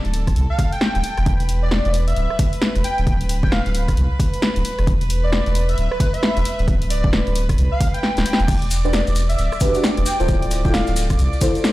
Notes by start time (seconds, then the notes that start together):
Already playing: A4 A5
0.05 D1, closed hi-hat
0.14 open hi-hat
0.27 kick, cross-stick, closed hi-hat
0.36 C2, closed hi-hat
0.50 F5
0.59 kick, open hi-hat
0.72 G5, closed hi-hat
0.81 G5, snare
0.95 D1 G5, cross-stick, closed hi-hat
1.04 open hi-hat
1.18 E1, cross-stick, closed hi-hat
1.26 B4 B5, kick, closed hi-hat
1.40 closed hi-hat
1.49 open hi-hat
1.63 D5
1.71 D5, snare
1.85 E1 D5, closed hi-hat
1.94 open hi-hat
2.07 E5, closed hi-hat
2.16 D1, closed hi-hat
2.30 cross-stick
2.39 kick, open hi-hat
2.53 closed hi-hat
2.62 snare
2.75 E1, cross-stick, closed hi-hat
2.84 G5, open hi-hat
2.98 D1, closed hi-hat
3.07 kick, closed hi-hat
3.21 closed hi-hat
3.29 open hi-hat
3.43 G5, kick
3.52 F5, snare
3.66 D1 F5, closed hi-hat
3.75 open hi-hat
3.88 kick, cross-stick, closed hi-hat
3.97 C2, closed hi-hat
4.20 kick, open hi-hat
4.34 closed hi-hat
4.42 snare
4.56 D1, closed hi-hat
4.65 open hi-hat
4.79 E1, cross-stick, closed hi-hat
4.87 kick, closed hi-hat
5.01 closed hi-hat
5.10 open hi-hat
5.24 D5
5.32 D5, snare
5.46 E1 D5, closed hi-hat
5.55 open hi-hat
5.69 E5, closed hi-hat
5.78 D1, closed hi-hat
5.91 B4, cross-stick
6.00 B4, kick, open hi-hat
6.14 E5, closed hi-hat
6.23 snare
6.36 E1, cross-stick, closed hi-hat
6.45 open hi-hat
6.59 D1, closed hi-hat
6.68 kick, closed hi-hat
6.82 closed hi-hat
6.90 D5, open hi-hat
7.04 kick
7.13 snare
7.27 D1, closed hi-hat
7.36 open hi-hat
7.49 kick, cross-stick, closed hi-hat
7.58 C2, closed hi-hat
7.72 F5
7.81 kick, open hi-hat
7.94 G5, closed hi-hat
8.03 G5, snare
8.17 D1 G5, snare, closed hi-hat
8.26 open hi-hat
8.33 snare
8.40 E1, closed hi-hat
8.48 D5 D6, kick, closed hi-hat, crash, maracas
8.62 closed hi-hat
8.71 open hi-hat, maracas
8.84 D4 F#4 G4 B4 D5, maracas
8.93 D5, snare, maracas
9.06 E1 D5, closed hi-hat, maracas
9.15 open hi-hat, maracas
9.29 E5, closed hi-hat, maracas
9.38 D1, closed hi-hat, maracas
9.52 cross-stick, maracas
9.60 D4 F#4 G4 B4, kick, open hi-hat, maracas
9.74 D4 F#4 G4 D5, closed hi-hat, maracas
9.84 snare, maracas
9.97 E1, cross-stick, closed hi-hat
10.06 G5, open hi-hat, maracas
10.20 D1 E4 F4 A4 C5, closed hi-hat, maracas
10.28 kick, closed hi-hat, maracas
10.42 closed hi-hat
10.51 open hi-hat, maracas
10.65 E4 F4 A4 D5 G5, kick, maracas
10.73 F5, snare, maracas
10.87 D1 F5, closed hi-hat, maracas
10.96 open hi-hat, maracas
11.10 kick, cross-stick, closed hi-hat, maracas
11.19 C2, closed hi-hat, maracas
11.33 maracas
11.41 E4 F4 A4 C5, kick, open hi-hat, maracas
11.55 closed hi-hat, maracas
11.64 snare, maracas